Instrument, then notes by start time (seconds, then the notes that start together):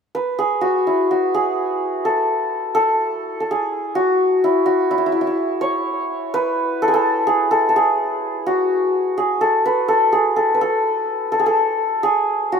santur
0.15 B4
0.39 G#4
0.61 F#4
0.87 E4
1.11 F#4
1.35 G#4
2.05 A4
2.75 A4
3.40 A4
3.51 G#4
3.95 F#4
4.44 E4
4.66 F#4
4.91 E4
4.98 E4
5.06 E4
5.12 E4
5.21 E4
5.27 E4
5.61 C#5
6.34 B4
6.82 A4
6.88 G#4
6.94 A4
7.27 G#4
7.51 A4
7.69 A4
7.76 G#4
8.46 F#4
9.18 G#4
9.41 A4
9.66 B4
9.88 A4
10.13 G#4
10.36 A4
10.54 B4
10.61 A4
11.32 A4
11.39 G#4
11.46 A4
12.03 G#4
12.52 F#4